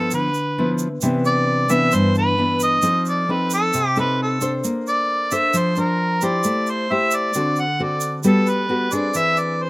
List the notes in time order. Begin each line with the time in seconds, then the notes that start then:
Already playing: F3 B3 E4 A4
0.11 D3 B4, shaker
0.34 shaker
0.58 F3 B3 E4
0.78 shaker
1.01 C3 E3 B3 D4, shaker
1.25 D5, shaker
1.69 E3 B3 D4 E5, shaker
1.92 G2 C5, shaker
2.15 B4, shaker
2.38 E3 B3 D4
2.60 D#5, shaker
2.82 F3 C4 D#4 A4, shaker
3.05 D5, shaker
3.29 C4 D#4 A4 B4
3.50 A4, shaker
3.73 C3, shaker
3.96 C4 D#4 A4 B4, shaker
4.22 A4
4.41 D4 A4 C5, shaker
4.64 A#3, shaker
4.87 D5, shaker
5.31 D4 A4 C5 E5, shaker
5.54 F3 C5, shaker
5.76 D4 C5, shaker
5.80 A#4
6.21 E4 G4 C5 D5, shaker
6.44 A3, shaker
6.66 C5, shaker
6.91 E4 G4 C5 E5
7.11 shaker
7.15 D5
7.34 D3 C4 F#4 A4, shaker
7.56 shaker
7.60 F#5
7.79 C4 F#4 A4 D5
8.01 shaker
8.23 G3 B3 F#4 A4, shaker
8.27 A4
8.47 B4, shaker
8.69 B3 F#4 A4
8.91 C4 D4 G#4 D5, shaker
9.14 E3 E5, shaker
9.37 D5, shaker
9.63 C5